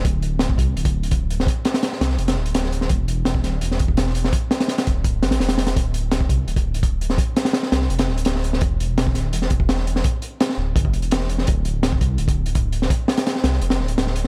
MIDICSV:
0, 0, Header, 1, 3, 480
1, 0, Start_track
1, 0, Tempo, 357143
1, 63, Time_signature, 4, 2, 24, 8
1, 19179, End_track
2, 0, Start_track
2, 0, Title_t, "Detuned saw bass"
2, 0, Program_c, 0, 39
2, 65, Note_on_c, 0, 26, 97
2, 765, Note_off_c, 0, 26, 0
2, 778, Note_on_c, 0, 36, 78
2, 997, Note_off_c, 0, 36, 0
2, 1021, Note_on_c, 0, 26, 75
2, 1963, Note_off_c, 0, 26, 0
2, 2702, Note_on_c, 0, 36, 79
2, 2919, Note_off_c, 0, 36, 0
2, 2942, Note_on_c, 0, 29, 93
2, 3182, Note_on_c, 0, 26, 90
2, 3202, Note_off_c, 0, 29, 0
2, 3399, Note_off_c, 0, 26, 0
2, 3422, Note_on_c, 0, 26, 83
2, 3884, Note_off_c, 0, 26, 0
2, 3897, Note_on_c, 0, 28, 98
2, 4601, Note_off_c, 0, 28, 0
2, 4617, Note_on_c, 0, 26, 80
2, 4837, Note_off_c, 0, 26, 0
2, 4862, Note_on_c, 0, 28, 79
2, 5803, Note_off_c, 0, 28, 0
2, 6549, Note_on_c, 0, 26, 76
2, 7024, Note_on_c, 0, 31, 90
2, 7044, Note_off_c, 0, 26, 0
2, 7134, Note_off_c, 0, 31, 0
2, 7146, Note_on_c, 0, 33, 93
2, 7252, Note_off_c, 0, 33, 0
2, 7262, Note_on_c, 0, 28, 99
2, 7724, Note_off_c, 0, 28, 0
2, 7746, Note_on_c, 0, 26, 97
2, 8445, Note_off_c, 0, 26, 0
2, 8457, Note_on_c, 0, 36, 79
2, 8676, Note_off_c, 0, 36, 0
2, 8698, Note_on_c, 0, 26, 75
2, 9642, Note_off_c, 0, 26, 0
2, 10380, Note_on_c, 0, 36, 77
2, 10598, Note_off_c, 0, 36, 0
2, 10619, Note_on_c, 0, 29, 91
2, 10862, Note_on_c, 0, 26, 93
2, 10882, Note_off_c, 0, 29, 0
2, 11079, Note_off_c, 0, 26, 0
2, 11102, Note_on_c, 0, 26, 80
2, 11564, Note_off_c, 0, 26, 0
2, 11581, Note_on_c, 0, 28, 98
2, 12283, Note_off_c, 0, 28, 0
2, 12298, Note_on_c, 0, 26, 75
2, 12517, Note_off_c, 0, 26, 0
2, 12538, Note_on_c, 0, 28, 79
2, 13482, Note_off_c, 0, 28, 0
2, 14216, Note_on_c, 0, 26, 76
2, 14436, Note_off_c, 0, 26, 0
2, 14457, Note_on_c, 0, 31, 96
2, 14697, Note_on_c, 0, 28, 99
2, 14717, Note_off_c, 0, 31, 0
2, 15401, Note_off_c, 0, 28, 0
2, 15430, Note_on_c, 0, 26, 98
2, 16128, Note_off_c, 0, 26, 0
2, 16145, Note_on_c, 0, 36, 77
2, 16361, Note_off_c, 0, 36, 0
2, 16380, Note_on_c, 0, 26, 78
2, 17323, Note_off_c, 0, 26, 0
2, 18061, Note_on_c, 0, 36, 79
2, 18278, Note_off_c, 0, 36, 0
2, 18304, Note_on_c, 0, 29, 92
2, 18544, Note_on_c, 0, 26, 91
2, 18564, Note_off_c, 0, 29, 0
2, 18760, Note_off_c, 0, 26, 0
2, 18784, Note_on_c, 0, 26, 81
2, 19179, Note_off_c, 0, 26, 0
2, 19179, End_track
3, 0, Start_track
3, 0, Title_t, "Drums"
3, 64, Note_on_c, 9, 42, 81
3, 66, Note_on_c, 9, 36, 111
3, 198, Note_off_c, 9, 42, 0
3, 200, Note_off_c, 9, 36, 0
3, 302, Note_on_c, 9, 42, 55
3, 436, Note_off_c, 9, 42, 0
3, 529, Note_on_c, 9, 38, 102
3, 543, Note_on_c, 9, 42, 81
3, 663, Note_off_c, 9, 38, 0
3, 667, Note_on_c, 9, 36, 79
3, 678, Note_off_c, 9, 42, 0
3, 780, Note_off_c, 9, 36, 0
3, 780, Note_on_c, 9, 36, 84
3, 788, Note_on_c, 9, 42, 73
3, 914, Note_off_c, 9, 36, 0
3, 923, Note_off_c, 9, 42, 0
3, 1031, Note_on_c, 9, 42, 57
3, 1143, Note_off_c, 9, 42, 0
3, 1143, Note_on_c, 9, 42, 71
3, 1145, Note_on_c, 9, 36, 83
3, 1278, Note_off_c, 9, 42, 0
3, 1279, Note_off_c, 9, 36, 0
3, 1390, Note_on_c, 9, 42, 52
3, 1494, Note_off_c, 9, 42, 0
3, 1494, Note_on_c, 9, 42, 76
3, 1501, Note_on_c, 9, 36, 88
3, 1629, Note_off_c, 9, 42, 0
3, 1636, Note_off_c, 9, 36, 0
3, 1754, Note_on_c, 9, 42, 54
3, 1880, Note_on_c, 9, 38, 53
3, 1888, Note_off_c, 9, 42, 0
3, 1973, Note_on_c, 9, 36, 92
3, 1991, Note_on_c, 9, 42, 77
3, 2014, Note_off_c, 9, 38, 0
3, 2108, Note_off_c, 9, 36, 0
3, 2125, Note_off_c, 9, 42, 0
3, 2215, Note_on_c, 9, 42, 74
3, 2224, Note_on_c, 9, 38, 85
3, 2341, Note_off_c, 9, 38, 0
3, 2341, Note_on_c, 9, 38, 96
3, 2343, Note_off_c, 9, 42, 0
3, 2343, Note_on_c, 9, 42, 73
3, 2454, Note_off_c, 9, 42, 0
3, 2454, Note_on_c, 9, 42, 74
3, 2458, Note_off_c, 9, 38, 0
3, 2458, Note_on_c, 9, 38, 101
3, 2589, Note_off_c, 9, 38, 0
3, 2589, Note_off_c, 9, 42, 0
3, 2589, Note_on_c, 9, 38, 50
3, 2705, Note_off_c, 9, 38, 0
3, 2705, Note_on_c, 9, 38, 91
3, 2705, Note_on_c, 9, 42, 74
3, 2819, Note_off_c, 9, 38, 0
3, 2819, Note_on_c, 9, 38, 30
3, 2839, Note_off_c, 9, 42, 0
3, 2937, Note_on_c, 9, 42, 57
3, 2954, Note_off_c, 9, 38, 0
3, 3063, Note_off_c, 9, 42, 0
3, 3063, Note_on_c, 9, 42, 69
3, 3066, Note_on_c, 9, 38, 88
3, 3182, Note_off_c, 9, 38, 0
3, 3182, Note_on_c, 9, 38, 30
3, 3198, Note_off_c, 9, 42, 0
3, 3302, Note_on_c, 9, 42, 57
3, 3316, Note_off_c, 9, 38, 0
3, 3421, Note_off_c, 9, 42, 0
3, 3421, Note_on_c, 9, 42, 84
3, 3426, Note_on_c, 9, 38, 105
3, 3540, Note_off_c, 9, 38, 0
3, 3540, Note_on_c, 9, 38, 57
3, 3555, Note_off_c, 9, 42, 0
3, 3661, Note_on_c, 9, 42, 58
3, 3674, Note_off_c, 9, 38, 0
3, 3780, Note_on_c, 9, 38, 44
3, 3795, Note_off_c, 9, 42, 0
3, 3889, Note_on_c, 9, 42, 75
3, 3899, Note_on_c, 9, 36, 112
3, 3915, Note_off_c, 9, 38, 0
3, 4023, Note_off_c, 9, 42, 0
3, 4033, Note_off_c, 9, 36, 0
3, 4141, Note_on_c, 9, 42, 62
3, 4275, Note_off_c, 9, 42, 0
3, 4373, Note_on_c, 9, 38, 110
3, 4381, Note_on_c, 9, 42, 82
3, 4496, Note_on_c, 9, 36, 95
3, 4507, Note_off_c, 9, 38, 0
3, 4515, Note_off_c, 9, 42, 0
3, 4619, Note_on_c, 9, 38, 39
3, 4621, Note_on_c, 9, 42, 64
3, 4631, Note_off_c, 9, 36, 0
3, 4753, Note_off_c, 9, 38, 0
3, 4756, Note_off_c, 9, 42, 0
3, 4856, Note_on_c, 9, 42, 85
3, 4990, Note_off_c, 9, 42, 0
3, 4992, Note_on_c, 9, 38, 35
3, 5098, Note_on_c, 9, 42, 59
3, 5110, Note_on_c, 9, 36, 80
3, 5127, Note_off_c, 9, 38, 0
3, 5220, Note_off_c, 9, 36, 0
3, 5220, Note_on_c, 9, 36, 81
3, 5233, Note_off_c, 9, 42, 0
3, 5337, Note_on_c, 9, 42, 78
3, 5344, Note_on_c, 9, 38, 101
3, 5354, Note_off_c, 9, 36, 0
3, 5462, Note_off_c, 9, 38, 0
3, 5462, Note_on_c, 9, 38, 32
3, 5472, Note_off_c, 9, 42, 0
3, 5576, Note_on_c, 9, 42, 68
3, 5597, Note_off_c, 9, 38, 0
3, 5705, Note_on_c, 9, 38, 52
3, 5710, Note_off_c, 9, 42, 0
3, 5815, Note_on_c, 9, 42, 85
3, 5818, Note_on_c, 9, 36, 111
3, 5840, Note_off_c, 9, 38, 0
3, 5949, Note_off_c, 9, 42, 0
3, 5952, Note_off_c, 9, 36, 0
3, 6059, Note_on_c, 9, 38, 95
3, 6066, Note_on_c, 9, 42, 70
3, 6188, Note_off_c, 9, 38, 0
3, 6188, Note_off_c, 9, 42, 0
3, 6188, Note_on_c, 9, 38, 87
3, 6188, Note_on_c, 9, 42, 78
3, 6292, Note_off_c, 9, 38, 0
3, 6292, Note_on_c, 9, 38, 92
3, 6304, Note_off_c, 9, 42, 0
3, 6304, Note_on_c, 9, 42, 74
3, 6425, Note_off_c, 9, 42, 0
3, 6425, Note_on_c, 9, 42, 76
3, 6427, Note_off_c, 9, 38, 0
3, 6429, Note_on_c, 9, 38, 96
3, 6541, Note_off_c, 9, 42, 0
3, 6541, Note_on_c, 9, 42, 63
3, 6551, Note_on_c, 9, 36, 91
3, 6563, Note_off_c, 9, 38, 0
3, 6676, Note_off_c, 9, 42, 0
3, 6685, Note_off_c, 9, 36, 0
3, 6779, Note_on_c, 9, 42, 68
3, 6780, Note_on_c, 9, 36, 86
3, 6913, Note_off_c, 9, 42, 0
3, 6915, Note_off_c, 9, 36, 0
3, 7023, Note_on_c, 9, 38, 94
3, 7026, Note_on_c, 9, 42, 79
3, 7136, Note_off_c, 9, 38, 0
3, 7136, Note_on_c, 9, 38, 100
3, 7146, Note_off_c, 9, 42, 0
3, 7146, Note_on_c, 9, 42, 72
3, 7261, Note_off_c, 9, 38, 0
3, 7261, Note_on_c, 9, 38, 92
3, 7273, Note_off_c, 9, 42, 0
3, 7273, Note_on_c, 9, 42, 71
3, 7373, Note_off_c, 9, 38, 0
3, 7373, Note_on_c, 9, 38, 98
3, 7376, Note_off_c, 9, 42, 0
3, 7376, Note_on_c, 9, 42, 79
3, 7495, Note_off_c, 9, 38, 0
3, 7495, Note_on_c, 9, 38, 100
3, 7505, Note_off_c, 9, 42, 0
3, 7505, Note_on_c, 9, 42, 71
3, 7615, Note_off_c, 9, 42, 0
3, 7615, Note_on_c, 9, 42, 65
3, 7616, Note_off_c, 9, 38, 0
3, 7616, Note_on_c, 9, 38, 95
3, 7747, Note_off_c, 9, 42, 0
3, 7747, Note_on_c, 9, 42, 89
3, 7748, Note_on_c, 9, 36, 110
3, 7750, Note_off_c, 9, 38, 0
3, 7882, Note_off_c, 9, 36, 0
3, 7882, Note_off_c, 9, 42, 0
3, 7984, Note_on_c, 9, 42, 62
3, 8119, Note_off_c, 9, 42, 0
3, 8218, Note_on_c, 9, 42, 78
3, 8220, Note_on_c, 9, 38, 105
3, 8340, Note_on_c, 9, 36, 86
3, 8352, Note_off_c, 9, 42, 0
3, 8354, Note_off_c, 9, 38, 0
3, 8458, Note_off_c, 9, 36, 0
3, 8458, Note_on_c, 9, 36, 94
3, 8462, Note_on_c, 9, 42, 69
3, 8593, Note_off_c, 9, 36, 0
3, 8596, Note_off_c, 9, 42, 0
3, 8705, Note_on_c, 9, 42, 57
3, 8822, Note_off_c, 9, 42, 0
3, 8822, Note_on_c, 9, 36, 87
3, 8822, Note_on_c, 9, 42, 73
3, 8956, Note_off_c, 9, 36, 0
3, 8957, Note_off_c, 9, 42, 0
3, 9063, Note_on_c, 9, 42, 59
3, 9179, Note_on_c, 9, 36, 91
3, 9180, Note_off_c, 9, 42, 0
3, 9180, Note_on_c, 9, 42, 69
3, 9314, Note_off_c, 9, 36, 0
3, 9314, Note_off_c, 9, 42, 0
3, 9425, Note_on_c, 9, 42, 55
3, 9539, Note_on_c, 9, 38, 51
3, 9560, Note_off_c, 9, 42, 0
3, 9652, Note_on_c, 9, 36, 110
3, 9654, Note_on_c, 9, 42, 88
3, 9673, Note_off_c, 9, 38, 0
3, 9786, Note_off_c, 9, 36, 0
3, 9789, Note_off_c, 9, 42, 0
3, 9898, Note_on_c, 9, 42, 68
3, 9900, Note_on_c, 9, 38, 98
3, 10012, Note_off_c, 9, 38, 0
3, 10012, Note_on_c, 9, 38, 106
3, 10026, Note_off_c, 9, 42, 0
3, 10026, Note_on_c, 9, 42, 69
3, 10125, Note_off_c, 9, 38, 0
3, 10125, Note_on_c, 9, 38, 117
3, 10134, Note_off_c, 9, 42, 0
3, 10134, Note_on_c, 9, 42, 80
3, 10253, Note_off_c, 9, 38, 0
3, 10253, Note_on_c, 9, 38, 55
3, 10269, Note_off_c, 9, 42, 0
3, 10377, Note_off_c, 9, 38, 0
3, 10377, Note_on_c, 9, 38, 101
3, 10378, Note_on_c, 9, 42, 75
3, 10506, Note_off_c, 9, 38, 0
3, 10506, Note_on_c, 9, 38, 30
3, 10513, Note_off_c, 9, 42, 0
3, 10618, Note_on_c, 9, 42, 59
3, 10641, Note_off_c, 9, 38, 0
3, 10734, Note_off_c, 9, 42, 0
3, 10734, Note_on_c, 9, 42, 74
3, 10744, Note_on_c, 9, 38, 92
3, 10857, Note_off_c, 9, 38, 0
3, 10857, Note_on_c, 9, 38, 29
3, 10868, Note_off_c, 9, 42, 0
3, 10988, Note_on_c, 9, 42, 56
3, 10991, Note_off_c, 9, 38, 0
3, 11086, Note_off_c, 9, 42, 0
3, 11086, Note_on_c, 9, 42, 81
3, 11102, Note_on_c, 9, 38, 103
3, 11220, Note_off_c, 9, 42, 0
3, 11232, Note_off_c, 9, 38, 0
3, 11232, Note_on_c, 9, 38, 51
3, 11343, Note_on_c, 9, 42, 60
3, 11366, Note_off_c, 9, 38, 0
3, 11468, Note_on_c, 9, 38, 47
3, 11478, Note_off_c, 9, 42, 0
3, 11570, Note_on_c, 9, 42, 81
3, 11582, Note_on_c, 9, 36, 106
3, 11602, Note_off_c, 9, 38, 0
3, 11704, Note_off_c, 9, 42, 0
3, 11717, Note_off_c, 9, 36, 0
3, 11832, Note_on_c, 9, 42, 61
3, 11966, Note_off_c, 9, 42, 0
3, 12064, Note_on_c, 9, 42, 75
3, 12066, Note_on_c, 9, 38, 109
3, 12186, Note_on_c, 9, 36, 82
3, 12199, Note_off_c, 9, 42, 0
3, 12200, Note_off_c, 9, 38, 0
3, 12292, Note_on_c, 9, 38, 35
3, 12298, Note_on_c, 9, 42, 60
3, 12321, Note_off_c, 9, 36, 0
3, 12426, Note_off_c, 9, 38, 0
3, 12433, Note_off_c, 9, 42, 0
3, 12537, Note_on_c, 9, 42, 83
3, 12660, Note_on_c, 9, 38, 38
3, 12672, Note_off_c, 9, 42, 0
3, 12770, Note_on_c, 9, 42, 63
3, 12779, Note_on_c, 9, 36, 85
3, 12794, Note_off_c, 9, 38, 0
3, 12900, Note_off_c, 9, 36, 0
3, 12900, Note_on_c, 9, 36, 92
3, 12905, Note_off_c, 9, 42, 0
3, 13022, Note_on_c, 9, 38, 107
3, 13022, Note_on_c, 9, 42, 75
3, 13035, Note_off_c, 9, 36, 0
3, 13141, Note_off_c, 9, 38, 0
3, 13141, Note_on_c, 9, 38, 36
3, 13156, Note_off_c, 9, 42, 0
3, 13267, Note_on_c, 9, 42, 62
3, 13276, Note_off_c, 9, 38, 0
3, 13385, Note_on_c, 9, 38, 54
3, 13402, Note_off_c, 9, 42, 0
3, 13495, Note_on_c, 9, 42, 86
3, 13502, Note_on_c, 9, 36, 107
3, 13519, Note_off_c, 9, 38, 0
3, 13629, Note_off_c, 9, 42, 0
3, 13637, Note_off_c, 9, 36, 0
3, 13736, Note_on_c, 9, 42, 64
3, 13871, Note_off_c, 9, 42, 0
3, 13984, Note_on_c, 9, 42, 85
3, 13987, Note_on_c, 9, 38, 117
3, 14104, Note_off_c, 9, 38, 0
3, 14104, Note_on_c, 9, 38, 54
3, 14118, Note_off_c, 9, 42, 0
3, 14239, Note_off_c, 9, 38, 0
3, 14457, Note_on_c, 9, 36, 106
3, 14465, Note_on_c, 9, 42, 88
3, 14580, Note_off_c, 9, 36, 0
3, 14580, Note_on_c, 9, 36, 83
3, 14600, Note_off_c, 9, 42, 0
3, 14696, Note_on_c, 9, 42, 61
3, 14715, Note_off_c, 9, 36, 0
3, 14814, Note_off_c, 9, 42, 0
3, 14814, Note_on_c, 9, 42, 43
3, 14936, Note_off_c, 9, 42, 0
3, 14936, Note_on_c, 9, 42, 85
3, 14949, Note_on_c, 9, 38, 112
3, 15059, Note_off_c, 9, 38, 0
3, 15059, Note_on_c, 9, 38, 50
3, 15070, Note_off_c, 9, 42, 0
3, 15180, Note_on_c, 9, 42, 64
3, 15193, Note_off_c, 9, 38, 0
3, 15300, Note_on_c, 9, 38, 41
3, 15314, Note_off_c, 9, 42, 0
3, 15416, Note_on_c, 9, 42, 80
3, 15430, Note_on_c, 9, 36, 111
3, 15434, Note_off_c, 9, 38, 0
3, 15551, Note_off_c, 9, 42, 0
3, 15565, Note_off_c, 9, 36, 0
3, 15658, Note_on_c, 9, 42, 59
3, 15793, Note_off_c, 9, 42, 0
3, 15900, Note_on_c, 9, 38, 100
3, 15902, Note_on_c, 9, 42, 87
3, 16027, Note_on_c, 9, 36, 85
3, 16035, Note_off_c, 9, 38, 0
3, 16036, Note_off_c, 9, 42, 0
3, 16141, Note_on_c, 9, 42, 78
3, 16145, Note_off_c, 9, 36, 0
3, 16145, Note_on_c, 9, 36, 84
3, 16276, Note_off_c, 9, 42, 0
3, 16279, Note_off_c, 9, 36, 0
3, 16371, Note_on_c, 9, 42, 63
3, 16501, Note_on_c, 9, 36, 88
3, 16506, Note_off_c, 9, 42, 0
3, 16508, Note_on_c, 9, 42, 69
3, 16636, Note_off_c, 9, 36, 0
3, 16643, Note_off_c, 9, 42, 0
3, 16744, Note_on_c, 9, 42, 57
3, 16868, Note_off_c, 9, 42, 0
3, 16868, Note_on_c, 9, 42, 69
3, 16872, Note_on_c, 9, 36, 87
3, 17002, Note_off_c, 9, 42, 0
3, 17007, Note_off_c, 9, 36, 0
3, 17102, Note_on_c, 9, 42, 53
3, 17231, Note_on_c, 9, 38, 50
3, 17237, Note_off_c, 9, 42, 0
3, 17341, Note_on_c, 9, 36, 100
3, 17341, Note_on_c, 9, 42, 80
3, 17366, Note_off_c, 9, 38, 0
3, 17475, Note_off_c, 9, 36, 0
3, 17475, Note_off_c, 9, 42, 0
3, 17581, Note_on_c, 9, 38, 92
3, 17594, Note_on_c, 9, 42, 71
3, 17704, Note_off_c, 9, 42, 0
3, 17704, Note_on_c, 9, 42, 80
3, 17710, Note_off_c, 9, 38, 0
3, 17710, Note_on_c, 9, 38, 101
3, 17827, Note_off_c, 9, 42, 0
3, 17827, Note_on_c, 9, 42, 79
3, 17832, Note_off_c, 9, 38, 0
3, 17832, Note_on_c, 9, 38, 100
3, 17950, Note_off_c, 9, 38, 0
3, 17950, Note_on_c, 9, 38, 48
3, 17962, Note_off_c, 9, 42, 0
3, 18060, Note_off_c, 9, 38, 0
3, 18060, Note_on_c, 9, 38, 98
3, 18062, Note_on_c, 9, 42, 70
3, 18190, Note_off_c, 9, 38, 0
3, 18190, Note_on_c, 9, 38, 33
3, 18196, Note_off_c, 9, 42, 0
3, 18299, Note_on_c, 9, 42, 59
3, 18325, Note_off_c, 9, 38, 0
3, 18416, Note_on_c, 9, 38, 106
3, 18428, Note_off_c, 9, 42, 0
3, 18428, Note_on_c, 9, 42, 73
3, 18550, Note_off_c, 9, 38, 0
3, 18551, Note_on_c, 9, 38, 30
3, 18562, Note_off_c, 9, 42, 0
3, 18658, Note_on_c, 9, 42, 63
3, 18685, Note_off_c, 9, 38, 0
3, 18788, Note_on_c, 9, 38, 109
3, 18789, Note_off_c, 9, 42, 0
3, 18789, Note_on_c, 9, 42, 79
3, 18909, Note_off_c, 9, 38, 0
3, 18909, Note_on_c, 9, 38, 58
3, 18924, Note_off_c, 9, 42, 0
3, 19026, Note_on_c, 9, 42, 68
3, 19043, Note_off_c, 9, 38, 0
3, 19160, Note_off_c, 9, 42, 0
3, 19179, End_track
0, 0, End_of_file